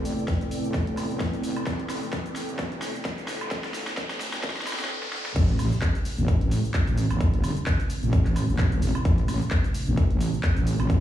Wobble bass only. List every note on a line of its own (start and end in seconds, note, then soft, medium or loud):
0.05 0.16 G1 medium
0.64 0.85 A1 medium
0.87 1.08 A1 loud
1.10 1.42 A1 loud
1.44 1.55 A1 loud
1.67 2.01 A1 medium
2.49 2.70 A1 loud
2.72 2.93 A1 loud
3.18 3.39 A1 loud
3.41 3.73 A1 loud
3.74 3.85 G1 medium
4.10 4.42 A1 loud
4.44 4.65 A1 medium
4.67 4.88 A1 loud
5.36 5.70 A1 loud
6.18 6.39 A1 loud
6.41 6.62 A1 loud
6.87 7.08 A1 medium
7.10 7.42 A1 medium
7.44 7.55 G1 medium
8.03 8.24 A1 loud
8.26 8.47 A1 loud
8.49 8.80 A1 loud
8.82 8.93 A1 loud
9.05 9.39 A1 loud
9.87 10.08 A1 loud
10.11 10.31 A1 loud
10.57 10.78 A1 loud
10.80 11.00 A1 medium